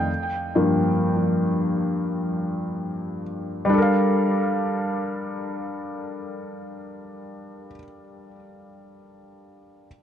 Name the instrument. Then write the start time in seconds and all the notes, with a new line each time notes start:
felt piano
Already playing: F2 D#3 A3 D5 D#5 F5 G5
0.55 G2 F3 A#3
3.65 G3
3.69 D4
3.74 A4
3.78 A#4
3.82 F5